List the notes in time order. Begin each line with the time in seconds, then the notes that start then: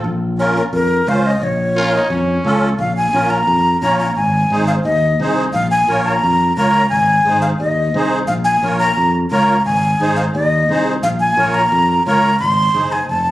0.04 A#1
0.39 C#4 F4 A#4 C#5
0.57 A#4
0.73 F2 A#4
1.07 C#2 C#4 F4 C5 F5
1.26 D#5
1.42 A#1 C#5
1.76 C#4 F4 A#4
1.94 D#4
2.10 F2 C#4
2.44 C#2 C#4 F4 A4
2.79 A#1 F5
2.97 G#5
3.13 A#1 C#4 F4 A#4
3.30 A#5
3.47 F2
3.81 A#1 C#4 F4 C#5 A#5
3.99 A#5
4.16 G#1 G#5
4.50 G#1 D#4 G#4 C5
4.67 F5
4.84 D#2 D#5
5.20 C2 D#4 G#4 C5
5.53 A#1 F5
5.71 G#5
5.88 A#1 F4 A#4 C#5
6.04 A#5
6.23 F2
6.56 C#2 F4 A#4 C#5 A#5
6.89 G#1 G#5
7.25 G#1 D#4 G#4 C5
7.42 F5
7.60 D#2 D#5
7.94 C2 D#4 G#4 C5
8.27 A#1 F5
8.44 G#5
8.63 A#1 F4 A#4 C#5
8.79 A#5
8.97 F2
9.30 C#2 F4 A#4 C#5 A#5
9.65 G#1 G#5
10.00 G#1 D#4 G#4 C5
10.16 F5
10.34 D#2 D#5
10.69 C2 D#4 G#4 C5
11.03 A#1 F5
11.20 G#5
11.37 A#1 F4 A#4 C#5
11.54 A#5
11.72 F2
12.06 C#2 F4 A#4 C#5 A#5
12.39 G#1 C6
12.75 F#1 D#4 G#4 C5
12.92 G#5
13.09 F1 A5